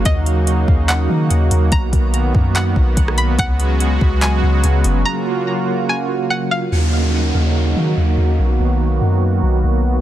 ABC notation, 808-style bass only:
X:1
M:4/4
L:1/8
Q:1/4=144
K:Ebm
V:1 name="808-style bass" clef=bass
E,,3 E,,2 E, E,, E,, | =B,,, B,,,2 ^F,,2 B,,, B,,,2 | D,,3 D,,2 D,, D,, G,,, | z8 |
E,,3 E,,2 E, E,, E,, | =B,,, B,,,2 ^F,,2 B,,, B,,,2 |]